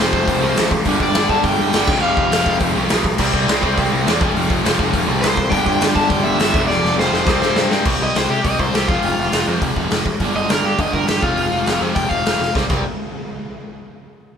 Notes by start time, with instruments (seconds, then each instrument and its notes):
Already playing: picked electric bass F1, distorted electric guitar F2, overdriven electric guitar C5
0.00 distorted electric guitar F2 C3 F3
0.13 picked electric bass F1, kick
0.28 picked electric bass F1, distorted electric guitar F2 C3 F3, kick, open hi-hat
0.41 picked electric bass C2, distorted electric guitar F2 C3 F3
0.55 picked electric bass A1, distorted electric guitar F2 C3 F3, snare, open hi-hat
0.71 kick
0.85 picked electric bass G1, distorted electric guitar G2 D3 G3, kick, open hi-hat
1.00 picked electric bass G1, overdriven electric guitar D5, kick
1.14 picked electric bass G1, distorted electric guitar G2 D3 G3, snare
1.29 distorted electric guitar G2 D3 G3, overdriven electric guitar A5, kick
1.43 picked electric bass G1, distorted electric guitar G2 D3 G3, overdriven electric guitar G5, kick, open hi-hat
1.59 picked electric bass G1
1.73 picked electric bass G1, distorted electric guitar G2 D3 G3, snare, open hi-hat
1.87 picked electric bass F1, distorted electric guitar F2 C3 F3, kick, crash
2.02 picked electric bass F1, distorted electric guitar F2 C3 F3, overdriven electric guitar F5
2.17 picked electric bass F1, kick
2.31 picked electric bass F1, distorted electric guitar F2 C3 F3, snare, open hi-hat
2.46 picked electric bass F1, kick
2.60 picked electric bass F1, distorted electric guitar F2 C3 F3, kick, open hi-hat
2.75 picked electric bass C2, distorted electric guitar F2 C3 F3
2.89 picked electric bass B1, distorted electric guitar F2 C3 F3, snare, open hi-hat
3.04 kick
3.18 picked electric bass C2, distorted electric guitar C3 G3 C4, kick, crash
3.34 picked electric bass C2, kick
3.47 picked electric bass C2, distorted electric guitar C3 G3 C4, snare, open hi-hat
3.62 distorted electric guitar C3 G3 C4, kick
3.77 picked electric bass C2, distorted electric guitar C3 G3 C4, kick, open hi-hat
3.92 picked electric bass C2
4.05 picked electric bass E2, distorted electric guitar C3 G3 C4, snare, open hi-hat
4.19 picked electric bass F1, distorted electric guitar F2 C3 F3, kick
4.35 picked electric bass F1, distorted electric guitar F2 C3 F3, open hi-hat
4.50 picked electric bass F1, kick
4.63 picked electric bass F1, distorted electric guitar F2 C3 F3, snare, open hi-hat
4.79 picked electric bass F1, kick
4.93 picked electric bass F1, distorted electric guitar F2 C3 F3, kick, open hi-hat
5.07 picked electric bass C2, distorted electric guitar F2 C3 F3
5.21 picked electric bass C2, distorted electric guitar F2 C3 F3, overdriven electric guitar B4, snare, open hi-hat
5.29 overdriven electric guitar C5
5.37 kick
5.50 picked electric bass G1, distorted electric guitar G2 D3 G3, overdriven electric guitar G5, kick, open hi-hat
5.66 picked electric bass G1, overdriven electric guitar G5, kick
5.81 picked electric bass G1, distorted electric guitar G2 D3 G3, snare, open hi-hat
5.94 distorted electric guitar G2 D3 G3, overdriven electric guitar A5, kick
6.10 picked electric bass G1, distorted electric guitar G2 D3 G3, overdriven electric guitar G5, kick, open hi-hat
6.23 picked electric bass G1, overdriven electric guitar E5
6.38 picked electric bass G1, distorted electric guitar G2 D3 G3, snare, open hi-hat
6.53 picked electric bass F1, distorted electric guitar F2 C3 F3, kick
6.67 picked electric bass F1, distorted electric guitar F2 C3 F3, overdriven electric guitar D5, snare
6.83 picked electric bass F1, snare
6.97 picked electric bass F1, distorted electric guitar F2 C3 F3, overdriven electric guitar C5, snare
7.12 picked electric bass F1, snare
7.25 picked electric bass C2, distorted electric guitar C3 G3 C4, kick, snare
7.41 picked electric bass G2, snare
7.56 picked electric bass G2, distorted electric guitar C3 G3 C4, snare
7.70 distorted electric guitar C3 G3 C4, snare
7.85 picked electric bass C2, distorted electric guitar C3 G3 C4, kick, crash
8.00 picked electric bass C2, overdriven electric guitar D#5
8.15 picked electric bass C2, overdriven electric guitar C5, snare, open hi-hat
8.29 picked electric bass C3, overdriven electric guitar G4
8.44 picked electric bass C2, distorted electric guitar C3 G3 C4, overdriven electric guitar D#5, kick, open hi-hat
8.59 picked electric bass C2, overdriven electric guitar C5, kick
8.74 picked electric bass C2, overdriven electric guitar G4, snare, open hi-hat
8.88 picked electric bass F1, distorted electric guitar F2 C3 F3, overdriven electric guitar F4, kick
9.03 picked electric bass F1, open hi-hat
9.19 picked electric bass F1
9.32 picked electric bass F1, snare, open hi-hat
9.46 picked electric bass F2, distorted electric guitar F2 C3 F3
9.62 picked electric bass F1, kick, open hi-hat
9.76 picked electric bass F1, kick
9.91 picked electric bass F1, snare, open hi-hat
10.06 picked electric bass A1, kick
10.20 picked electric bass G1, distorted electric guitar G2 D3 G3, kick, open hi-hat
10.35 picked electric bass G1, overdriven electric guitar D#5
10.49 picked electric bass G1, overdriven electric guitar A#4, snare, open hi-hat
10.63 picked electric bass G2, overdriven electric guitar G4
10.78 picked electric bass G1, distorted electric guitar G2 D3 G3, overdriven electric guitar D#5, kick, open hi-hat
10.93 picked electric bass G1, overdriven electric guitar A#4, kick
11.07 picked electric bass G1, overdriven electric guitar G4, snare, open hi-hat
11.22 picked electric bass F1, distorted electric guitar F2 C3 F3, overdriven electric guitar F4, kick
11.37 picked electric bass F1, open hi-hat
11.52 picked electric bass F1
11.66 picked electric bass F1, snare, open hi-hat
11.81 picked electric bass F2, distorted electric guitar F2 C3 F3
11.95 picked electric bass F1, overdriven electric guitar G5, kick, open hi-hat
12.09 picked electric bass F1, overdriven electric guitar F5, kick
12.25 picked electric bass F1, snare, open hi-hat
12.39 picked electric bass F1, snare
12.55 picked electric bass C2, distorted electric guitar C3 G3 C4, kick, snare
12.69 picked electric bass C2, distorted electric guitar C3 G3 C4, kick, crash